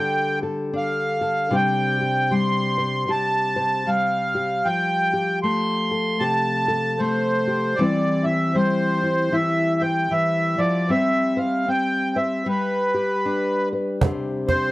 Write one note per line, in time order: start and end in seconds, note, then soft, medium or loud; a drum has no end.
0.00 1.52 D3 medium
0.00 1.51 G3 medium
0.00 0.72 D4 medium
0.00 1.52 G4 soft
0.00 0.42 A4 soft
0.00 0.39 G5 medium
0.43 1.20 A4 medium
0.73 1.48 D4 medium
0.73 1.56 F5 medium
1.21 1.52 A4 medium
1.51 3.07 C3 medium
1.51 2.31 G3 soft
1.51 4.61 D4 soft
1.51 2.00 G4 soft
1.51 2.78 C5 medium
1.55 2.34 G5 medium
2.01 3.08 G4 soft
2.31 3.86 G3 medium
2.31 3.11 C6 medium
2.78 3.56 C5 soft
3.08 4.61 C3 soft
3.08 4.34 G4 soft
3.08 3.90 A5 medium
3.56 5.91 C5 medium
3.87 5.43 G3 medium
3.87 4.68 F5 medium
4.35 4.68 G4 soft
4.65 7.74 F3 medium
4.65 5.39 G5 medium
5.13 6.20 G4 soft
5.43 6.99 A3 medium
5.43 6.24 C6 medium
5.91 6.67 A4 medium
6.20 7.73 C3 soft
6.20 7.47 G4 soft
6.20 7.01 A5 medium
6.68 7.77 A4 medium
6.99 7.74 A3 soft
6.99 7.80 C5 medium
7.47 7.81 G4 soft
7.76 9.31 E3 medium
7.76 8.55 G3 medium
7.76 8.25 D5 medium
7.80 10.89 C4 medium
7.80 8.24 E4 medium
7.80 9.80 C5 medium
8.24 9.02 E4 soft
8.24 8.56 E5 medium
8.55 10.88 G3 medium
8.55 9.36 C5 medium
9.03 9.32 E4 soft
9.32 10.10 E3 medium
9.32 10.90 E4 medium
9.32 9.82 E5 medium
9.81 10.87 C5 medium
9.81 10.13 G5 medium
10.11 10.58 E3 medium
10.11 10.60 E5 medium
10.58 10.90 F3 medium
10.58 10.91 D5 medium
10.89 12.45 G3 medium
10.89 11.67 C4 medium
10.89 11.36 C5 medium
10.89 11.39 E5 medium
11.37 12.15 C5 medium
11.37 11.69 F5 medium
11.68 12.46 C4 medium
11.68 12.17 G5 medium
12.16 12.43 C5 medium
12.16 12.48 E5 medium
12.46 14.72 G3 medium
12.46 13.69 B4 medium
12.94 13.99 G4 soft
13.26 13.99 D4 medium
13.73 13.99 B4 medium
14.01 14.72 C3 medium
14.01 14.72 D4 medium
14.01 14.72 G4 medium
14.01 14.72 C5 medium
14.01 cajon bass medium
14.48 14.72 C5 medium
14.48 cajon bass medium
14.48 cajon slap soft